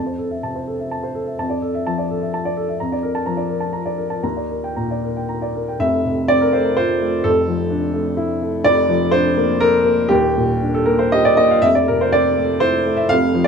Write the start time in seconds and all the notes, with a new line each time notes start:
Already playing: F2 A5
0.06 C5
0.18 A4
0.31 E5
0.43 C3 A5
0.56 C5
0.67 A4
0.80 E5
0.91 A5
1.03 C5
1.15 A4
1.27 E5
1.39 F2 A5
1.50 D5
1.62 A4
1.74 E5
1.87 F3 A5
1.98 D5
2.11 A4
2.22 E5
2.34 A5
2.45 D5
2.57 A4
2.69 E5
2.80 F2 A#5
2.92 D5
3.03 A#4
3.15 A5
3.26 F3 A#5
3.37 D5
3.49 A#4
3.60 A5
3.73 A#5
3.86 D5
3.98 A#4
4.10 A5
4.23 D#2 A#5
4.37 D5
4.50 A#4
4.64 G5
4.76 A#2 A#5
4.91 D5
5.04 A#4
5.17 G5
5.29 A#5
5.42 D5
5.55 A#4
5.68 G5
5.79 F1 F2 E5
6.05 C3
6.28 C4 D5
6.41 A#4
6.53 A3 C5
6.65 A#4
6.77 F4 C5
7.02 A3
7.24 F1 F2 A4
7.48 F3
7.70 D4
7.94 A3
8.17 E4
8.42 A3
8.64 F1 F2 D5
8.89 F3
9.11 D4 C5
9.37 A#3
9.60 A4 A#4
9.85 A#3
10.09 D#1 D#2 G4
10.37 A#2
10.61 D4
10.74 A4
10.86 A#3 A#4
10.99 C5
11.12 G4 D#5
11.25 D5
11.37 A#3 D#5
11.51 F5
11.62 F1 F2 E5
11.75 D5
11.88 C3 A#4
12.01 C5
12.13 C4 D5
12.37 A3
12.60 E4 C5
12.86 A3
12.97 E5
13.09 F1 F2 F5
13.35 F3
13.44 D5